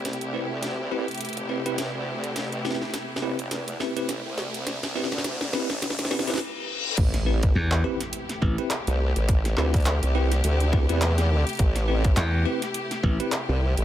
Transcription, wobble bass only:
X:1
M:4/4
L:1/16
Q:"Swing 16ths" 1/4=104
K:Am
V:1 name="Wobble bass" clef=bass
C,,3 D,,4 z2 G,,,3 A,,, D,,3 | A,,,2 z4 G,,,2 E,,2 z2 A,,, C,,3- | C,,3 D,,4 A,,,2 C,,3 z4 | A,,,4 z8 z C,,2 A,,,- |
A,,,2 D,,3 C,,3 D,,3 E,,4 z | A,,,4 z8 z C,,2 A,,, |]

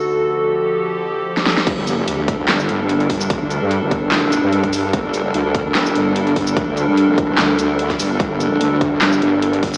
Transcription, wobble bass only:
X:1
M:4/4
L:1/16
Q:"Swing 16ths" 1/4=147
K:Gm
V:1 name="Wobble bass" clef=bass
z16 | G,,,4 D,,4 G,,,2 G,,,4 G,,,2 | F,,, D,,2 G,,2 G,,,6 G,,4- G,, | G,,,4 D,,4 G,,,2 G,,,4 G,,,2 |
F,,, D,,2 G,,2 F,,,2 A,,, D,,6 G,,,2 | G,,,4 D,,4 G,,,2 G,,,4 G,,,2 |]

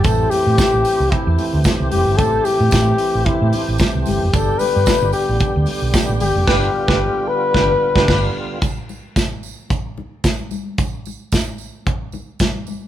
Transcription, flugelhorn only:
X:1
M:4/4
L:1/8
Q:1/4=112
K:Gmix
V:1 name="Flugelhorn"
A G3 E2 z G | A G3 E2 z G | A B2 G2 z2 G- | G3 B4 z |
z8 | z8 |]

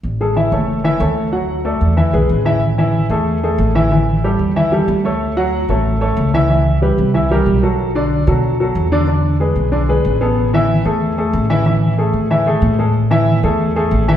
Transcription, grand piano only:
X:1
M:4/4
L:1/8
Q:1/4=186
K:A
V:1 name="Grand piano"
z [G,GA] [E,Ee] [A,Ac]2 [E,Ee] [A,Ac]2 | [F,Ff]2 [A,Ad]2 [E,Ee] [G,GB]2 [E,Ee] | z [E,Ee]2 [A,GA]2 [A,GA]2 [E,Ee] | [E,Ee]2 [=G,=GA]2 [E,Ee] [G,GA]2 [A,Ac]- |
[A,Ac] [F,Ff]2 [A,Ac]2 [A,Ac]2 [E,Ee] | [E,Ee]2 [=G,=GB]2 [E,Ee] [G,G_B]2 [F,FA]- | [F,FA] [D,Dd]2 [F,FA]2 [F,FA]2 [D,Dd] | [D,Dd]2 [G,GB]2 [D,Dd] [G,GB]2 [B,GA]- |
[B,GA] [E,Ee]2 [A,GA]2 [A,GA]2 [E,Ee] | [E,Ee]2 [A,GA]2 [E,Ee] [A,GA]2 [G,GA] | z [E,Ee]2 [A,GA]2 [A,GA]2 [E,Ee] |]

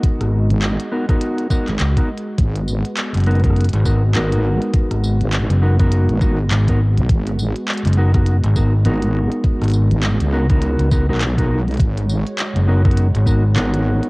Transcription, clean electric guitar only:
X:1
M:4/4
L:1/16
Q:"Swing 16ths" 1/4=102
K:G#m
V:1 name="Clean electric guitar"
[B,DFA]6 [B,DFA] [B,DFA]3 [B,DFA] z2 [B,DFA] z2 | z6 [B,DFA] [B,DFA]2 z [B,DFA] z [B,DFA]4- | [B,DFA]6 [B,DFA] [B,DFA]3 [B,DFA] z2 [B,DFA] z2 | z6 [B,DFA] [B,DFA]2 z [B,DFA] z [B,DFA]4- |
[B,DFA]6 [B,DFA] [B,DFA]3 [B,DFA] [B,DFA] z [B,DFA]2 z | z6 [B,DFA] [B,DFA]2 z [B,DFA] z [B,DFA]4 |]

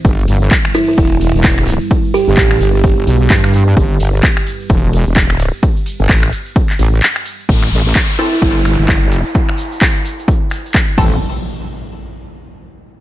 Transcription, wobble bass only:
X:1
M:4/4
L:1/16
Q:"Swing 16ths" 1/4=129
K:Gmix
V:1 name="Wobble bass" clef=bass
G,,,2 G,,,2 z4 E,,,3 E,,,4 z | z3 G,,, A,,,2 G,,,4 B,,,2 G,,4 | G,,,2 G,,,2 z4 E,,,3 E,,,4 z | z3 G,,, A,,,2 z4 A,,,2 z4 |
A,,,2 A,,,2 z4 G,,,3 G,,,4 z | z12 z2 A,,,2 | z16 |]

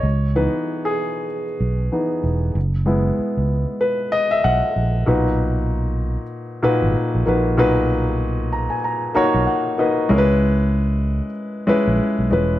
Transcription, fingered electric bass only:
X:1
M:4/4
L:1/16
Q:"Swing 16ths" 1/4=95
K:B
V:1 name="Fingered electric bass" clef=bass
C,,3 z6 z B,,,2 z2 E,,,2 | F,,,4 z C,,2 z4 z B,,, z A,,,2 | B,,,6- B,,, z4 G,,, z A,,, A,,,2 | B,,,6- B,,, z4 B,,, z4 |
C,,6- C,, z4 A,,, z B,,, E,,,2 |]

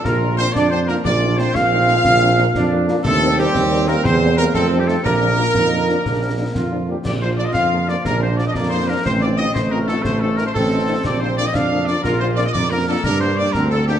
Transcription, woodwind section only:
X:1
M:6/8
L:1/16
Q:3/8=120
K:Bb
V:1 name="Woodwind section"
B4 c2 d2 c2 B2 | d4 c2 f6- | f8- f2 z2 | A4 G6 B2 |
c4 B2 A3 G A2 | B12- | B8- B2 z2 | d2 c2 d e f4 d2 |
B2 c2 d e d2 c2 B2 | c2 d2 e2 c2 B2 A2 | c2 A2 B c A6 | d2 c2 d e f4 d2 |
B2 c2 d e d2 B2 A2 | B2 c2 d2 B2 A2 G2 |]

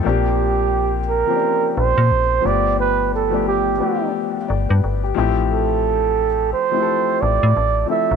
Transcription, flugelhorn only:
X:1
M:4/4
L:1/8
Q:"Swing 16ths" 1/4=88
K:Bblyd
V:1 name="Flugelhorn"
G3 B2 c2 d | =B A G2 z4 | A3 c2 d2 e |]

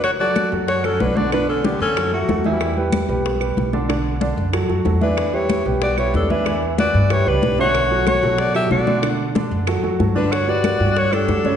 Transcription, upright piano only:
X:1
M:4/4
L:1/8
Q:1/4=187
K:Bm
V:1 name="Upright piano"
z [F,FA]2 [F,FA]2 [F,FA]2 [D,Dd] | [D,Dd]2 [D,Dd]2 [F,FA] [F,FA] [F,FA] [E,Ee]- | [E,Ee] [G,GB]2 [G,GB]2 [G,GB]2 [D,Dd] | [D,Dd]2 [D,Dd]2 [F,FA] [F,FA] [F,FA] [E,Ee]- |
[E,Ee] [G,GB]2 [G,GB]2 [G,GB]2 [E,Ee] | [E,Ee]2 [E,Ee]2 [G,GB] [G,GB] [G,GB] [D,De]- | [D,De] [F,FA]2 [F,FA]2 [F,FA]2 [D,Dd] | [D,Dd]2 [D,Dd]2 [F,FA] [F,FA] [F,FA] [D,Dd]- |
[D,Dd] [G,FB]2 [G,FG]2 [G,FG]2 [C,Cc] |]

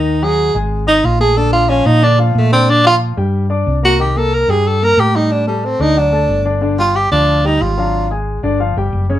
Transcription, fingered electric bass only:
X:1
M:4/4
L:1/8
Q:1/4=183
K:Cdor
V:1 name="Fingered electric bass" clef=bass
E,,3 _A,,,3 B,,,2- | B,,,3 B,,3 B,,2- | B,,3 G,,3 C,,2- | C,,3 G,,3 A,,2- |
A,,3 D,,3 G,,,2- | G,,,3 D,,3 _A,,,2- | _A,,,3 G,,,2 G,,, _G,,,2 |]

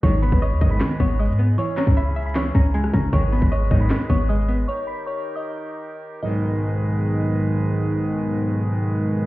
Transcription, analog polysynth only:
X:1
M:4/4
L:1/16
Q:1/4=155
K:G#m
V:1 name="Analog polysynth" clef=bass
[B,,,G,,D,] z4 z [B,,,G,,D,]2 z8 | z16 | [B,,,G,,D,] z4 z [B,,,G,,D,]2 z8 | z16 |
[B,,,G,,D,]16- | [B,,,G,,D,]16 |]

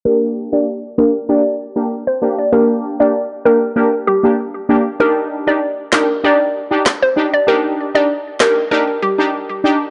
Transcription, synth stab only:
X:1
M:4/4
L:1/16
Q:1/4=97
K:Gm
V:1 name="Synth stab"
[B,DG]3 [B,DG] z2 [B,DG] z [B,DG] z2 [B,DG] z2 [B,DG] z | [B,DG]3 [B,DG] z2 [B,DG] z [B,DG] z2 [B,DG] z2 [B,DG] z | [DEG]3 [DEG] z2 [DEG] z [DEG] z2 [DEG] z2 [DEG] z | [DEG]3 [DEG] z2 [DEG] z [DEG] z2 [DEG] z2 [DEG] z |]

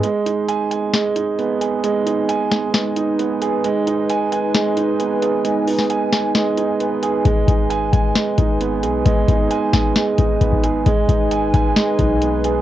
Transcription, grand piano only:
X:1
M:4/4
L:1/8
Q:1/4=133
K:G#m
V:1 name="Grand piano"
G, D g g G, D B, G | G, D g g G, D B, G | G, D g g G, D B, G | G, D g g G, D B, G |
G, D g g G, D B, G | G, D g g G, D B, G | G, D g g G, D B, G |]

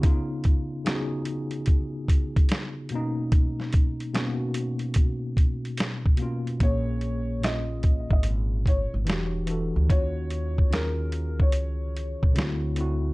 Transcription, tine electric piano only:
X:1
M:4/4
L:1/8
Q:"Swing 16ths" 1/4=73
K:Bbphr
V:1 name="Tine electric piano"
[D,CEF] z [D,CEGA]3 z2 [=B,,^A,^C^D]- | [=B,,^A,^C^D] z [B,,A,C^F]3 z2 [B,,A,C=F] | [B,,B,DA] z [B,,B,DF]3 z [=E,=D^F=G] [E,DF=A] | [E,DFG] z [E,DFA]3 z [=D,=C=E^F] [D,CEF] |]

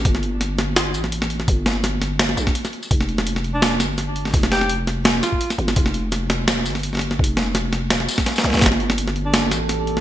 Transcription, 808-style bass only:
X:1
M:4/4
L:1/16
Q:"Swing 16ths" 1/4=168
K:Fmix
V:1 name="808-style bass" clef=bass
G,,,8- G,,,2 A,,,6 | G,,,8- G,,,2 B,,,2 z4 | F,,,8- F,,,2 G,,,6 | F,,,8- F,,,2 z4 G,,,2 |
F,,,8- F,,,2 G,,,6 | F,,,8- F,,,2 z4 C,, C,, | G,,,8- G,,,2 A,,,6 |]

